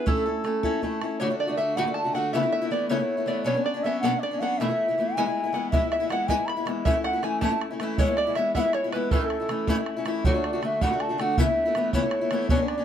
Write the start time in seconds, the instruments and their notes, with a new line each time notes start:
0.06 steel-string acoustic guitar A3 C#4 E4 A4, five-string banjo A4, bansuri A4, bodhran
0.26 steel-string acoustic guitar C#4 E4 A4
0.44 steel-string acoustic guitar A3 C#4 E4 A4, bodhran
0.63 steel-string acoustic guitar A3 C#4 E4 A4, bodhran
0.82 steel-string acoustic guitar A3 C#4 E4 A4, bodhran
1.01 steel-string acoustic guitar C#4 E4 A4, bodhran
1.20 steel-string acoustic guitar D2 A2 D3 A3 D4 F#4, five-string banjo C#5, bansuri C#5
1.30 steel-string acoustic guitar D3 A3 D4
1.39 bansuri D5, five-string banjo D5
1.47 steel-string acoustic guitar D3 A3 D4 F#4
1.57 steel-string acoustic guitar D3 A3 D4 F#4, five-string banjo E5, bansuri E5
1.76 steel-string acoustic guitar D2 A2 D3 A3 D4 F#4, bansuri F#5, five-string banjo F#5
1.85 steel-string acoustic guitar D3 A3 D4 F#4
1.94 five-string banjo A5, bansuri A5
2.04 steel-string acoustic guitar D3 A3 D4 F#4
2.14 steel-string acoustic guitar D3 A3 D4 F#4, bansuri F#5, five-string banjo F#5
2.33 steel-string acoustic guitar C#3 E3 A3 B3 E4, five-string banjo E5, bansuri F#5
2.38 bansuri E5
2.43 steel-string acoustic guitar A3 B3 E4
2.52 five-string banjo E5
2.61 steel-string acoustic guitar A3 B3 E4
2.71 steel-string acoustic guitar E3 A3 B3 E4, bansuri D5, five-string banjo D5
2.89 steel-string acoustic guitar C#3 E3 A3 B3 E4, bansuri C#5, five-string banjo C#5
2.99 steel-string acoustic guitar A3 B3 E4
3.17 steel-string acoustic guitar A3 B3 E4
3.26 steel-string acoustic guitar E3 A3 B3 E4, five-string banjo D5
3.44 steel-string acoustic guitar B2 F#3 B3 C#4 D4, bansuri C#5, five-string banjo C#5
3.54 steel-string acoustic guitar B3 C#4 D4
3.64 bansuri D5, five-string banjo D5
3.74 steel-string acoustic guitar B3 C#4 D4
3.83 steel-string acoustic guitar F#3 B3 C#4, bansuri E5, five-string banjo E5
3.87 steel-string acoustic guitar D4
4.00 steel-string acoustic guitar B2 F#3, bansuri F#5, five-string banjo F#5
4.04 steel-string acoustic guitar B3 C#4 D4
4.12 steel-string acoustic guitar B3 C#4 D4
4.20 bansuri D5, five-string banjo D5
4.31 steel-string acoustic guitar B3 C#4 D4
4.40 steel-string acoustic guitar F#3 B3 C#4 D4, bansuri F#5, five-string banjo F#5
4.58 steel-string acoustic guitar E2 B2 E3 A3 B3 E4, bansuri E5, five-string banjo E5
4.68 steel-string acoustic guitar E3 A3 B3 E4
4.88 steel-string acoustic guitar E3 A3 B3 E4
4.98 steel-string acoustic guitar E3 A3 B3 E4
5.15 steel-string acoustic guitar E3 G#3 B3 E4, bansuri G#5, five-string banjo G#5
5.26 steel-string acoustic guitar G#3 B3 E4
5.44 steel-string acoustic guitar G#3 B3 E4
5.53 steel-string acoustic guitar E3 G#3 B3 E4, five-string banjo F#5
5.71 steel-string acoustic guitar E3 G#3 B3 E4, bansuri E5, five-string banjo E5, bodhran
5.81 steel-string acoustic guitar G#3 B3 E4
5.90 bansuri E5, five-string banjo E5, bodhran
6.00 steel-string acoustic guitar G#3 B3 E4
6.09 steel-string acoustic guitar E3 G#3 B3 E4, bansuri F#5, five-string banjo F#5, bodhran
6.28 steel-string acoustic guitar E3 G#3 B3 E4, bansuri G#5, five-string banjo G#5, bodhran
6.37 steel-string acoustic guitar G#3 B3 E4
6.46 bansuri B5, five-string banjo B5, bodhran
6.57 steel-string acoustic guitar G#3 B3 E4
6.65 steel-string acoustic guitar E3 G#3 B3 E4, bodhran
6.85 steel-string acoustic guitar A2 E3 A3 C#4 E4, five-string banjo E5, bansuri E5, bodhran
6.94 steel-string acoustic guitar A3 C#4 E4
7.04 five-string banjo F#5, bansuri F#5, bodhran
7.13 steel-string acoustic guitar A3 C#4 E4
7.22 steel-string acoustic guitar E3 A3 C#4 E4, five-string banjo G#5, bansuri G#5, bodhran
7.41 steel-string acoustic guitar A2 E3 A3 C#4 E4, five-string banjo A5, bansuri A5, bodhran
7.51 steel-string acoustic guitar A3 C#4 E4
7.61 bodhran
7.71 steel-string acoustic guitar A3 C#4 E4
7.80 steel-string acoustic guitar E3 A3 C#4 E4, bodhran
7.98 steel-string acoustic guitar E3 G#3 B3 E4, bansuri C#5, five-string banjo C#5, bodhran
8.08 steel-string acoustic guitar G#3 B3 E4
8.17 bansuri D5, five-string banjo D5, bodhran
8.27 steel-string acoustic guitar G#3 B3 E4
8.35 steel-string acoustic guitar E3 G#3 B3 E4, bansuri E5, five-string banjo E5, bodhran
8.55 steel-string acoustic guitar E3 G#3 B3 E4, five-string banjo E5, bansuri F#5, bodhran
8.60 bansuri E5
8.64 steel-string acoustic guitar G#3 B3 E4
8.73 five-string banjo C#5, bansuri C#5, bodhran
8.84 steel-string acoustic guitar G#3 B3 E4
8.93 steel-string acoustic guitar E3 G#3 B3 E4, bansuri B4, five-string banjo B4, bodhran
9.11 steel-string acoustic guitar A2 E3 A3 C#4 E4, five-string banjo A4, bansuri A4, bodhran
9.22 steel-string acoustic guitar A3 C#4 E4
9.30 bodhran
9.40 steel-string acoustic guitar A3 C#4 E4
9.49 steel-string acoustic guitar E3 A3 C#4 E4, bodhran
9.67 steel-string acoustic guitar A2 E3 A3 C#4 E4, bodhran
9.78 steel-string acoustic guitar A3 C#4 E4
9.86 bodhran
9.97 steel-string acoustic guitar A3 C#4 E4
10.05 steel-string acoustic guitar E3 A3 C#4 E4, bodhran
10.24 steel-string acoustic guitar D2 A2 D3 A3 D4 F#4, bansuri C#5, bodhran
10.34 steel-string acoustic guitar D3 A3 D4 F#4
10.44 bansuri D5, bodhran
10.53 steel-string acoustic guitar D3 A3 D4 F#4
10.62 steel-string acoustic guitar D3 A3 D4 F#4, bansuri E5, bodhran
10.81 steel-string acoustic guitar D2 A2 D3 A3 D4 F#4, bansuri F#5, bodhran
10.91 steel-string acoustic guitar D3 A3 D4 F#4
11.00 bansuri A5, bodhran
11.09 steel-string acoustic guitar D3 A3 D4 F#4
11.18 steel-string acoustic guitar D3 A3 D4 F#4, bansuri F#5, bodhran
11.38 steel-string acoustic guitar C#3 E3 A3 B3 E4, bansuri E5, bodhran
11.46 steel-string acoustic guitar A3 B3 E4
11.65 steel-string acoustic guitar A3 B3 E4
11.75 steel-string acoustic guitar E3 A3 B3 E4, bodhran
11.93 steel-string acoustic guitar C#3 E3 A3 B3 E4, bansuri C#5, bodhran
12.02 steel-string acoustic guitar A3 B3 E4
12.11 bodhran
12.21 steel-string acoustic guitar A3 B3 E4
12.31 steel-string acoustic guitar E3 A3 B3 E4, bodhran
12.49 steel-string acoustic guitar B2 F#3 B3 C#4 D4, bansuri C#5, bodhran
12.59 steel-string acoustic guitar B3 C#4 D4
12.68 bansuri D5, bodhran
12.78 steel-string acoustic guitar B3 C#4 D4